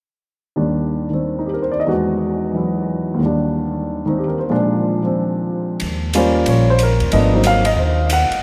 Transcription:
0.56 1.87 D#2 soft
0.56 1.08 D#3 soft
0.56 1.88 G3 soft
0.56 1.88 D4 soft
1.10 1.87 D#3 soft
1.10 1.89 C4 soft
1.39 1.49 D#4 soft
1.46 1.58 G4 soft
1.54 1.69 A#4 soft
1.62 1.76 C5 soft
1.72 1.82 D5 medium
1.80 1.91 D#5 medium
1.86 3.18 E2 soft
1.86 3.19 G#3 soft
1.86 3.18 D#4 soft
1.86 3.19 F#4 medium
2.53 3.19 E3 soft
2.53 3.20 F#3 soft
2.53 3.20 E4 soft
3.14 4.48 D#2 soft
3.14 4.04 D#3 soft
3.22 4.52 G3 soft
3.22 4.50 D4 soft
4.06 4.50 D#3 soft
4.06 4.52 C4 soft
4.06 4.23 D#4 soft
4.18 4.37 G4 soft
4.28 4.45 A#4 soft
4.39 4.56 C5 soft
4.50 5.81 A#2 soft
4.50 5.01 F3 soft
4.50 5.81 G#3 soft
4.50 5.82 D4 medium
5.03 5.81 F3 soft
5.03 5.82 C4 soft
5.80 6.44 D#2 medium
5.80 ride soft
6.13 6.64 G3 medium
6.13 6.64 A#3 medium
6.13 6.64 C#4 medium
6.13 6.65 F4 medium
6.13 6.46 C5 medium
6.13 hi-hat pedal soft
6.13 ride medium
6.46 6.96 A#1 medium
6.46 6.68 C#5 medium
6.46 ride medium
6.70 6.81 C5 medium
6.79 hi-hat pedal medium
6.79 ride medium
6.83 7.32 A#4 medium
7.00 7.11 D#2 medium
7.00 ride soft
7.12 7.74 G#1 medium
7.12 7.31 F3 soft
7.12 7.32 A3 soft
7.12 7.32 B3 soft
7.12 7.32 D4 medium
7.12 7.43 D#5 medium
7.12 ride medium
7.34 7.62 F#3 soft
7.34 7.62 A#3 soft
7.34 7.63 C4 soft
7.34 7.63 D#4 medium
7.43 7.66 F5 medium
7.43 hi-hat pedal soft
7.43 ride medium
7.65 7.77 D#5 medium
7.65 ride medium
7.77 8.27 D#2 medium
7.77 8.29 C5 soft
8.10 8.42 F#5 medium
8.10 hi-hat pedal medium
8.10 ride medium
8.30 muted upright bass stroke soft
8.30 ride soft

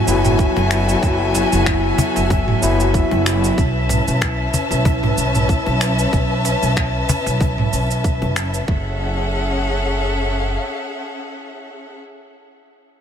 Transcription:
0.00 0.06 F#3 medium
0.00 0.07 B3 medium
0.00 0.08 E4 medium
0.00 8.70 E4 medium
0.00 3.54 F#4 medium
0.00 3.54 A4 medium
0.00 3.54 E5 medium
0.00 8.70 E5 medium
0.00 3.54 G#5 medium
0.06 0.46 F#1 medium
0.06 0.67 F#3 medium
0.06 0.67 B3 medium
0.06 0.68 E4 loud
0.06 cabasa medium
0.25 mid tom medium
0.25 cabasa soft
0.38 kick loud
0.38 cajon slap soft
0.38 cabasa soft
0.56 0.94 F#1 loud
0.56 cajon slap medium
0.70 0.99 F#3 medium
0.70 0.99 B3 medium
0.70 1.00 E4 medium
0.70 finger snap medium
0.70 cabasa medium
0.89 cabasa soft
1.01 1.41 F#1 medium
1.01 2.58 F#3 medium
1.01 2.59 B3 medium
1.01 kick medium
1.01 cabasa soft
1.05 2.60 E4 medium
1.35 cajon slap medium
1.35 cabasa medium
1.53 1.90 F#1 medium
1.53 cabasa soft
1.66 finger snap medium
1.66 kick loud
1.66 cabasa soft
1.98 cajon bass medium
1.98 cabasa medium
2.16 2.53 F#1 medium
2.16 cajon slap medium
2.16 cabasa soft
2.30 kick loud
2.30 cajon bass medium
2.30 cabasa soft
2.48 mid tom medium
2.61 3.01 F#1 medium
2.61 3.22 F#3 medium
2.61 3.23 B3 medium
2.61 3.23 E4 loud
2.61 cabasa medium
2.80 cabasa soft
2.94 kick loud
2.94 cabasa soft
3.11 3.49 F#1 loud
3.11 cajon slap medium
3.25 3.54 F#3 medium
3.25 3.54 B3 medium
3.25 3.55 E4 medium
3.25 finger snap medium
3.25 cabasa medium
3.44 cabasa soft
3.58 3.97 B1 medium
3.58 8.65 C#4 medium
3.58 8.65 B4 medium
3.58 8.65 E5 medium
3.58 8.65 A5 medium
3.58 kick loud
3.58 cabasa soft
3.89 cajon slap medium
3.89 mid tom medium
3.89 cabasa medium
4.08 4.45 B1 medium
4.08 cabasa soft
4.22 finger snap medium
4.22 kick loud
4.22 cabasa soft
4.54 cajon bass medium
4.54 cabasa medium
4.71 5.09 B1 medium
4.71 cajon slap medium
4.71 cabasa soft
4.85 kick loud
4.85 cajon bass medium
4.85 cabasa soft
5.03 cajon slap medium
5.03 mid tom medium
5.17 5.56 B1 medium
5.17 cabasa medium
5.35 mid tom medium
5.35 cabasa soft
5.49 kick loud
5.49 cajon slap soft
5.49 cabasa soft
5.66 6.04 B1 medium
5.66 cajon slap medium
5.81 finger snap medium
5.81 cabasa medium
5.99 cabasa soft
6.13 6.52 B1 medium
6.13 kick loud
6.13 cabasa soft
6.45 cajon slap medium
6.45 cabasa medium
6.63 7.00 B1 medium
6.63 cabasa soft
6.77 finger snap medium
6.77 kick loud
6.77 cabasa soft
7.09 cajon bass medium
7.09 cabasa medium
7.26 7.64 B1 medium
7.26 cajon slap medium
7.26 cabasa soft
7.41 kick medium
7.41 cajon bass medium
7.41 cabasa soft
7.58 mid tom medium
7.73 8.24 B1 medium
7.73 cabasa medium
7.91 cabasa soft
8.04 kick loud
8.04 cabasa soft
8.22 8.59 F#1 medium
8.22 cajon slap medium
8.36 finger snap medium
8.36 cabasa medium
8.54 cabasa soft
8.68 10.56 F#1 medium
8.68 12.00 C#4 medium
8.68 12.00 G#4 medium
8.68 12.00 A4 medium
8.68 12.00 E5 medium
8.68 12.00 F#5 medium
8.68 kick medium

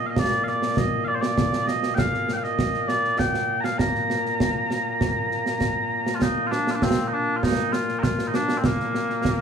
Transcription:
0.00 9.41 A#2 medium
0.00 8.65 A#3 medium
0.06 0.19 D#5 medium
0.06 0.10 F5 medium
0.16 0.44 D5 loud
0.16 concert bass drum medium
0.16 snare medium
0.44 0.48 F5 medium
0.44 snare soft
0.48 0.78 D5 medium
0.62 snare medium
0.77 1.05 D#5 medium
0.77 concert bass drum medium
0.77 snare medium
1.05 1.15 D5 loud
1.05 1.08 F5 loud
1.15 1.21 C5 medium
1.21 1.67 D5 loud
1.21 snare medium
1.38 concert bass drum medium
1.38 snare loud
1.53 snare medium
1.67 1.95 D#5 loud
1.67 snare medium
1.83 snare medium
1.95 1.99 G5 medium
1.95 concert bass drum medium
1.95 snare loud
1.99 2.33 F5 medium
2.14 snare soft
2.29 snare medium
2.33 2.37 G5 medium
2.37 2.44 F5 medium
2.44 2.88 D#5 medium
2.44 snare soft
2.59 concert bass drum medium
2.59 snare medium
2.74 snare soft
2.88 3.19 D5 loud
2.88 snare medium
3.04 snare soft
3.19 3.61 G5 loud
3.19 concert bass drum medium
3.19 snare medium
3.34 snare medium
3.61 3.78 F5 medium
3.61 3.64 A#5 medium
3.61 snare medium
3.78 6.15 A#5 medium
3.78 concert bass drum medium
3.78 snare medium
3.95 snare soft
4.10 snare medium
4.25 snare soft
4.40 concert bass drum medium
4.40 snare medium
4.71 snare medium
5.01 concert bass drum medium
5.01 snare medium
5.31 snare soft
5.46 snare medium
5.61 concert bass drum soft
5.61 snare medium
6.06 snare medium
6.15 6.22 F4 medium
6.22 6.47 D#4 medium
6.22 concert bass drum medium
6.22 snare loud
6.47 6.51 F4 medium
6.51 6.71 D4 medium
6.51 snare medium
6.67 6.75 F4 medium
6.67 snare medium
6.75 6.83 D4 medium
6.82 7.08 C4 medium
6.82 concert bass drum medium
6.82 snare loud
7.08 7.13 D#4 medium
7.13 7.36 D4 medium
7.36 7.43 F4 medium
7.43 7.72 D#4 medium
7.43 concert bass drum medium
7.43 snare medium
7.58 snare soft
7.72 7.99 F4 loud
7.72 snare medium
7.89 snare soft
7.99 8.03 A#4 medium
8.03 8.27 F4 medium
8.03 concert bass drum medium
8.03 snare medium
8.19 snare medium
8.27 8.35 D#4 medium
8.34 8.58 D4 loud
8.34 snare medium
8.49 snare medium
8.58 8.65 C4 medium
8.64 9.41 A#3 medium
8.64 concert bass drum medium
8.64 snare loud
8.80 snare soft
8.95 snare medium
9.10 snare soft
9.25 concert bass drum medium
9.25 snare loud

